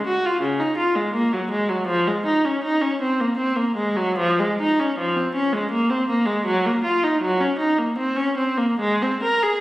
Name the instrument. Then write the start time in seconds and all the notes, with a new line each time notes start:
viola
0.06 F#4
0.25 F4
0.41 C#3
0.60 D#4
0.77 F4
0.96 G#3
1.14 A#3
1.33 F#3
1.51 G#3
1.69 F#3
1.87 F3
2.07 G#3
2.26 D#4
2.45 C#4
2.63 D#4
2.81 C#4
3.01 C4
3.20 A#3
3.37 C4
3.56 A#3
3.76 G#3
3.97 F#3
4.18 F3
4.39 G#3
4.61 D#4
4.80 C#4
4.98 F3
5.16 C4
5.35 C#4
5.53 G#3
5.71 A#3
5.90 C4
6.09 A#3
6.26 G#3
6.45 F#3
6.66 A#3
6.84 F4
7.04 D#4
7.21 F#3
7.41 C#4
7.59 D#4
7.79 A#3
7.98 C4
8.17 C#4
8.37 C4
8.58 A#3
8.79 G#3
9.02 C4
9.23 A#4
9.43 G#4